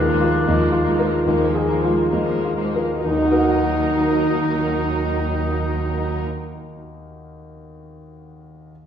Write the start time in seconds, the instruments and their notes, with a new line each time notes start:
Already playing: cello section D#2, grand piano D#2 A#4, oboe D4
0.08 viola section F3 G#3, violin section A#3
0.21 grand piano F4
0.46 cello section D#2, viola section F3 G#3, violin section A#3, grand piano D#4
0.72 grand piano F4
0.84 viola section F3 G#3, violin section A#3
0.99 grand piano A#4
1.25 grand piano D#2, cello section D#2, viola section F3 G#3, violin section A#3
1.55 grand piano G#4
1.66 viola section F3 G#3, violin section A#3
1.84 grand piano F4
2.11 cello section D#2, viola section F3 G#3, violin section A#3, grand piano D#4
2.44 grand piano F4
2.57 viola section F3 G#3, violin section A#3
2.75 grand piano A#4
3.01 cello section D#2, grand piano D#2, viola section F#3 D#4, violin section D#4 A#4, oboe D#4
3.11 grand piano D#3
3.18 grand piano D#4
3.25 grand piano F#4
3.32 grand piano A#4
3.39 grand piano F#5